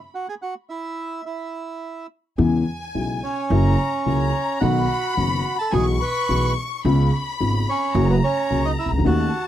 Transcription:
Already playing: violin section B5
0.15 bandoneon F#4 F#5
0.29 bandoneon G#4 G#5
0.42 bandoneon F#4 F#5
0.69 bandoneon E4 E5
1.26 bandoneon E4 E5
2.38 upright bass E2, upright piano E2 C#3 E3 G#3 B3 E4, violin section G#5
2.95 upright piano B1 B2 C#3 G#3 B3 E4, upright bass B1
3.23 bandoneon C#4 C#5
3.50 upright bass F#1, upright piano F#2 C#3 F#3 A#3 E4, violin section A#5
4.05 upright piano C#2 C#3 F#3 A#3 E4, upright bass C#2, violin section A#5
4.60 upright piano B1 B2 D#3 F#3 B3 F#4, upright bass B1, bandoneon F#4 F#5, violin section B5
5.15 upright piano F#1 F#2 D#3 F#3 B3 F#4, upright bass F#1, bandoneon F#4 F#5
5.59 bandoneon A4 A5
5.71 upright piano B1 B2 E3 G#3 B3 F#4, upright bass B1, bandoneon G#4 G#5, violin section C#6
6.00 bandoneon B4 B5
6.29 upright bass B1, upright piano B1 B2 E3 G#3 B3 F#4
6.84 upright bass C#2, upright piano C#2 C#3 G#3 B3 F4, violin section B5
7.40 upright piano G#1 G#2 C#3 G#3 B3 F4, upright bass G#1
7.69 bandoneon C#4 C#5
7.94 upright bass F#1, upright piano F#2 C#3 F#3 A#3 F#4, violin section A#5
8.10 bandoneon B3 B4
8.24 bandoneon C#4 C#5
8.50 upright bass C#2, upright piano C#2 C#3 F#3 A#3 F#4
8.65 bandoneon D#4 D#5
8.79 bandoneon E4 E5
8.85 upright piano C2, upright bass C2
8.92 upright piano C#2, upright bass C#2
8.98 upright piano D2, upright bass D2
9.04 upright piano D#2 D#3 A3 C#4 F#4, upright bass D#2, bandoneon F#4 F#5, violin section A5

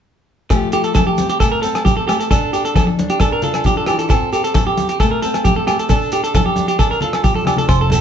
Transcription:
0.50 steel-string acoustic guitar F2 F3 A3 G4, muted clean electric guitar stroke, muted steel-string acoustic guitar stroke, kick, cross-stick, closed hi-hat, low agogo, shekere
0.72 clean electric guitar G4, steel-string acoustic guitar A4, closed hi-hat, shekere
0.84 clean electric guitar A4, closed hi-hat, shekere
0.95 steel-string acoustic guitar F3, clean electric guitar A4, kick, cross-stick, closed hi-hat, muted conga, high conga, low agogo, shekere
1.07 clean electric guitar G4
1.18 steel-string acoustic guitar C4, closed hi-hat, high conga, shekere
1.29 clean electric guitar G4, closed hi-hat
1.40 steel-string acoustic guitar C3 A3, clean electric guitar A4, kick, cross-stick, closed hi-hat, muted conga, low agogo, shekere
1.52 clean electric guitar A#4
1.62 steel-string acoustic guitar C4, clean electric guitar A4, closed hi-hat, muted conga, shekere
1.75 cross-stick, closed hi-hat, low agogo
1.85 steel-string acoustic guitar F3, clean electric guitar G4, kick, closed hi-hat, high conga, shekere
1.97 clean electric guitar A4
2.08 steel-string acoustic guitar A3, clean electric guitar G4, cross-stick, closed hi-hat, low agogo, shekere
2.20 clean electric guitar A4, closed hi-hat, shekere
2.30 steel-string acoustic guitar C3 D4, clean electric guitar A4, kick, cross-stick, closed hi-hat, muted conga, low agogo, shekere
2.53 clean electric guitar G4, steel-string acoustic guitar A4, closed hi-hat, shekere
2.65 clean electric guitar A4, closed hi-hat, shekere
2.74 steel-string acoustic guitar E3, clean electric guitar A4, kick, cross-stick, closed hi-hat, muted conga, high conga, low agogo, shekere
2.87 muted clean electric guitar stroke
2.98 steel-string acoustic guitar D4, closed hi-hat, high conga
3.10 clean electric guitar G4, closed hi-hat
3.20 steel-string acoustic guitar D3 D4, clean electric guitar A4, kick, cross-stick, closed hi-hat, muted conga, low agogo, shekere
3.32 clean electric guitar A#4
3.42 steel-string acoustic guitar F4, clean electric guitar A4, closed hi-hat, muted conga, low conga, shekere
3.54 cross-stick, closed hi-hat, low agogo
3.64 steel-string acoustic guitar D3, clean electric guitar G4, kick, closed hi-hat, high conga, shekere
3.77 clean electric guitar A4
3.86 steel-string acoustic guitar E3, clean electric guitar G4, cross-stick, closed hi-hat, low agogo, shekere
3.99 clean electric guitar A4, closed hi-hat, shekere
4.09 steel-string acoustic guitar F2 C4, clean electric guitar A4, kick, cross-stick, closed hi-hat, muted conga, low agogo, shekere
4.33 clean electric guitar G4, steel-string acoustic guitar A4, closed hi-hat, shekere
4.44 clean electric guitar A4, closed hi-hat, shekere
4.54 steel-string acoustic guitar F3, clean electric guitar A4, kick, cross-stick, closed hi-hat, muted conga, high conga, low agogo, shekere
4.67 clean electric guitar G4
4.77 steel-string acoustic guitar C4, closed hi-hat, high conga, shekere
4.89 clean electric guitar G4, closed hi-hat
5.00 steel-string acoustic guitar C3 A3, clean electric guitar A4, kick, cross-stick, closed hi-hat, muted conga, low agogo, shekere
5.11 clean electric guitar A#4
5.22 steel-string acoustic guitar C4, clean electric guitar A4, closed hi-hat, muted conga, shekere
5.34 cross-stick, closed hi-hat, low agogo
5.44 steel-string acoustic guitar F3, clean electric guitar G4, kick, closed hi-hat, high conga, shekere
5.56 clean electric guitar A4
5.67 steel-string acoustic guitar A3, clean electric guitar G4, cross-stick, closed hi-hat, low agogo, shekere
5.79 clean electric guitar A4, closed hi-hat, shekere
5.89 steel-string acoustic guitar C3 D4, clean electric guitar A4, kick, cross-stick, closed hi-hat, muted conga, low agogo, shekere
6.01 shekere
6.11 clean electric guitar G4, steel-string acoustic guitar A4, closed hi-hat, shekere
6.24 clean electric guitar A4, closed hi-hat, shekere
6.34 steel-string acoustic guitar E3, clean electric guitar A4, kick, cross-stick, closed hi-hat, muted conga, high conga, low agogo, shekere
6.46 clean electric guitar G4
6.56 steel-string acoustic guitar D4, closed hi-hat, high conga, shekere
6.68 clean electric guitar G4, closed hi-hat, shekere
6.79 steel-string acoustic guitar D3 D4, clean electric guitar A4, kick, cross-stick, closed hi-hat, muted conga, low agogo, shekere
6.91 clean electric guitar A#4, shekere
7.01 steel-string acoustic guitar F4, clean electric guitar A4, closed hi-hat, muted conga, low conga
7.13 cross-stick, closed hi-hat, low agogo
7.23 clean electric guitar G4, muted steel-string acoustic guitar stroke, kick, closed hi-hat, high conga, shekere
7.35 clean electric guitar A4, high conga, shekere
7.45 steel-string acoustic guitar D4, clean electric guitar G4, cross-stick, closed hi-hat, low conga, low agogo, shekere
7.57 clean electric guitar A4, closed hi-hat, low conga, shekere
7.69 fingered electric bass F1, clean electric guitar C5, muted steel-string acoustic guitar stroke, kick, cross-stick, closed hi-hat, low agogo, shekere
7.81 clean electric guitar A4
7.90 steel-string acoustic guitar C4, clean electric guitar A4, closed hi-hat, high conga, shekere

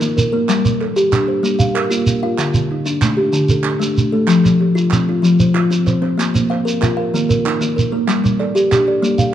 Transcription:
Already playing: kalimba D#4 A#4
0.01 kalimba D#3 A#3, shekere
0.17 kalimba A#4, shekere
0.32 kalimba A#3 A#4
0.49 kalimba G3, clap, shekere
0.65 kalimba G3, shekere
0.81 kalimba A4, clap
0.96 kalimba G4, shekere
1.12 kalimba D4, clap, shekere
1.28 kalimba G4 C5
1.43 kalimba G3 A#3, shekere
1.59 kalimba F5, shekere
1.74 kalimba A#4, clap
1.90 kalimba A#3 F4, shekere
2.07 shekere
2.23 kalimba F4 F5
2.38 kalimba D3, clap, shekere
2.54 kalimba D3, shekere
2.71 kalimba D#4
2.86 kalimba D4, shekere
3.02 kalimba A3, clap, shekere
3.17 kalimba D4 G4
3.33 kalimba D3, shekere
3.49 kalimba A4, shekere
3.64 kalimba D4, clap
3.80 kalimba A3, shekere
3.98 shekere
4.12 kalimba A3 A4
4.27 kalimba F3, clap, shekere
4.45 kalimba F3, clap, shekere
4.61 kalimba G4
4.75 kalimba F4, shekere
4.91 kalimba C4, clap, shekere
5.09 kalimba F4
5.22 kalimba F3, shekere
5.40 kalimba C5, shekere
5.54 kalimba F4, clap
5.71 kalimba C4, shekere
5.87 kalimba C5, clap, shekere
6.02 kalimba C4 C5, clap
6.18 kalimba A#3, clap, shekere
6.34 kalimba A#3, shekere
6.50 kalimba C5 F5, clap
6.65 kalimba A#4, shekere
6.81 kalimba F4 A#4, clap, shekere
6.97 kalimba A#4 F5
7.14 kalimba D#3 A#3, shekere
7.29 kalimba A#4, shekere
7.46 kalimba D#4, clap
7.61 kalimba D#3 A#3, shekere
7.76 kalimba A#4, shekere
7.92 kalimba A#3 A#4
8.08 kalimba G3, clap, shekere
8.24 kalimba G3, shekere
8.40 kalimba A4 D5, clap
8.55 kalimba G4, shekere
8.71 kalimba D4 G4, clap, shekere
8.87 kalimba G4 D5
9.02 kalimba G3 A#3, shekere
9.18 kalimba F5, shekere

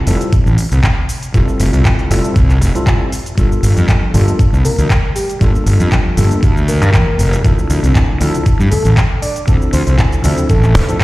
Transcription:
0.07 fingered electric bass F1, tine electric piano G3 C4 E4 F4 A4, open hi-hat, shaker
0.21 closed hi-hat, shaker
0.32 muted fingered electric bass stroke, kick, closed hi-hat, shaker
0.46 fingered electric bass A1, shaker
0.58 open hi-hat, shaker
0.71 fingered electric bass C2, closed hi-hat, shaker
0.83 kick, clap, closed hi-hat, shaker
1.09 open hi-hat, shaker
1.23 closed hi-hat, shaker
1.34 fingered electric bass F1, tine electric piano G3 C4 E4 F4 A4, kick, closed hi-hat, shaker
1.48 shaker
1.60 fingered electric bass F1, open hi-hat, shaker
1.73 fingered electric bass C2, closed hi-hat, shaker
1.85 kick, clap, closed hi-hat, shaker
1.99 closed hi-hat
2.10 fingered electric bass F1, tine electric piano G3 C4 E4 F4 A4, open hi-hat, shaker
2.24 closed hi-hat, shaker
2.36 fingered electric bass C2, kick, closed hi-hat, shaker
2.50 clap, closed hi-hat, shaker
2.61 fingered electric bass F1, open hi-hat, shaker
2.75 tine electric piano G3 C4 E4 F4 A4, closed hi-hat, shaker
2.87 kick, clap, closed hi-hat, shaker
3.12 open hi-hat, shaker
3.26 closed hi-hat, shaker
3.37 fingered electric bass G1, tine electric piano G3 A#3 D4 F4 A4, kick, closed hi-hat, shaker
3.52 shaker
3.63 fingered electric bass G1, open hi-hat, shaker
3.77 fingered electric bass F2, closed hi-hat, shaker
3.88 kick, clap, closed hi-hat, shaker
4.14 fingered electric bass G1, tine electric piano G3 A#3 D4 F4 A4, open hi-hat, high conga, low conga, shaker
4.28 closed hi-hat, shaker
4.39 muted fingered electric bass stroke, kick, closed hi-hat, shaker
4.53 fingered electric bass C2, shaker
4.65 soft synth lead A#4, open hi-hat, low conga, shaker
4.78 fingered electric bass D2, closed hi-hat, high conga, shaker
4.90 kick, clap, closed hi-hat, shaker
5.16 soft synth lead G4, open hi-hat, shaker
5.30 closed hi-hat, shaker
5.40 fingered electric bass G1, tine electric piano G3 A#3 D4 F4 A4, kick, closed hi-hat, shaker
5.55 shaker
5.66 fingered electric bass G1, open hi-hat, shaker
5.80 fingered electric bass F2, closed hi-hat, shaker
5.92 kick, clap, closed hi-hat, shaker
6.17 fingered electric bass G1, tine electric piano G3 A#3 D4 F4 A4, open hi-hat, high conga, low conga, shaker
6.31 closed hi-hat, shaker
6.43 fingered electric bass D2, kick, closed hi-hat, shaker
6.57 shaker
6.68 soft synth lead A#4, open hi-hat, low conga, shaker
6.81 fingered electric bass G2, closed hi-hat, high conga, shaker
6.94 fingered electric bass E2, kick, clap, closed hi-hat, shaker
7.19 fingered electric bass F1, open hi-hat, shaker
7.33 closed hi-hat, shaker
7.43 fingered electric bass D2, tine electric piano F3 C4 D4 E4 A4, kick, closed hi-hat, shaker
7.59 shaker
7.70 fingered electric bass D2, open hi-hat, shaker
7.83 fingered electric bass C2, closed hi-hat, shaker
7.95 kick, clap, closed hi-hat, shaker
8.20 fingered electric bass D2, tine electric piano F3 C4 D4 E4 A4, open hi-hat, high conga, low conga, shaker
8.34 closed hi-hat, shaker
8.46 muted fingered electric bass stroke, kick, closed hi-hat, shaker
8.60 fingered electric bass G2, shaker
8.71 soft synth lead A4, open hi-hat, low conga, shaker
8.85 fingered electric bass A1, closed hi-hat, high conga, shaker
8.97 kick, clap, closed hi-hat, shaker
9.22 soft synth lead D5, open hi-hat, shaker
9.36 closed hi-hat, shaker
9.47 fingered electric bass D2, tine electric piano F3 C4 D4 E4 A4, kick, closed hi-hat, shaker
9.62 shaker
9.73 fingered electric bass D2, soft synth lead C5, open hi-hat, shaker
9.87 fingered electric bass C2, soft synth lead C5, closed hi-hat, shaker
9.99 kick, clap, closed hi-hat, shaker
10.12 closed hi-hat, shaker
10.24 fingered electric bass D2, tine electric piano F3 C4 D4 E4 A4, open hi-hat, high conga, low conga, shaker
10.38 closed hi-hat, shaker
10.49 fingered electric bass A1, soft synth lead A4, kick, closed hi-hat, shaker
10.63 clap, shaker
10.75 fingered electric bass G2, open hi-hat, low conga, shaker
10.87 tine electric piano F3 C4 D4 E4 A4, closed hi-hat, high conga, shaker
11.01 kick, clap, closed hi-hat, high tom

